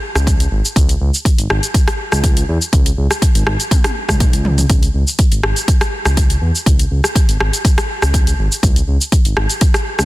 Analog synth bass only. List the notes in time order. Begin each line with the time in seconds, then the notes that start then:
0.15 C#2
0.51 G#1
0.76 C#2
1.01 C#2
1.38 G#1
1.50 G#1
2.12 C#2
2.49 E2
2.73 C#2
2.97 C#2
3.35 G#1
3.47 G#1
4.09 C#2
4.20 B1
4.33 C#2
4.70 C#2
4.94 C#2
5.32 G#1
5.43 G#1
6.05 C#2
6.42 E2
6.66 C#2
6.91 C#2
7.29 G#1
7.40 G#1
8.02 C#2
8.38 G#1
8.63 C#2
8.88 C#2
9.25 G#1
9.37 G#1
9.99 C#2